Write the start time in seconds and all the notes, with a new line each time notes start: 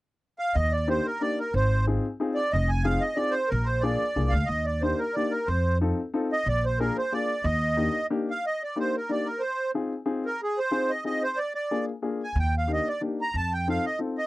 0.39 F5
0.55 D#2 D#5
0.72 D5
0.87 A#3 D4 D#4 G4 C5
1.06 A#4
1.21 A#3 D4 D#4 G4 D5
1.39 A#4
1.54 G#1 C5
1.87 C4 D#4 F4 G#4
2.20 C4 D#4 F4 G#4
2.35 D5
2.52 F1 D#5
2.69 G#5
2.85 C4 D#4 F4 G#4 F5
3.01 D#5
3.15 C4 D#4 F4 G#4 D5
3.31 C5
3.48 A#1 A#4
3.64 C5
3.81 A#3 D4 F4 G#4 D5
4.16 C2 A#3 D4 F4 G#4
4.29 D2 F5
4.46 D#2 D#5
4.65 D5
4.81 A#3 D4 D#4 G4 C5
4.98 A#4
5.14 A#3 D4 D#4 G4 D5
5.31 A#4
5.46 F2 C5
5.81 C4 D#4 F4 A4
6.14 C4 D#4 F4 A4
6.32 D#5
6.46 A#1 D5
6.65 C5
6.79 A#3 D4 F4 G#4 A#4
6.98 C5
7.12 A#3 D4 F4 G#4 D5
7.44 D#2 D#5
7.77 A#3 D4 D#4 G4
8.10 A#3 D4 D#4 G4
8.30 F5
8.46 D#5
8.63 D5
8.76 A#3 D4 D#4 G4 C5
8.97 A#4
9.09 A#3 D4 D#4 G4 D5
9.25 A#4
9.40 C5
9.74 C4 D#4 F4 G#4
10.06 C4 D#4 F4 G#4
10.26 A#4
10.43 G#4
10.59 C5
10.71 C4 D#4 F4 G#4
10.89 D#5
11.04 C4 D#4 F4 G#4 D#5
11.23 C5
11.37 D5
11.55 D5
11.71 A#3 D4 F4 G#4
12.02 A#3 D4 F4 G#4
12.23 G#5
12.35 D#2 G5
12.58 F5
12.68 A#3 D4 D#4 G4
12.73 D#5
12.88 D5
13.01 A#3 D4 D#4 G4
13.21 A#5
13.34 F2 A5
13.53 G5
13.68 C4 D#4 F4 A4 F5
13.86 D#5
13.99 C4 D#4 F4 A4
14.18 D#5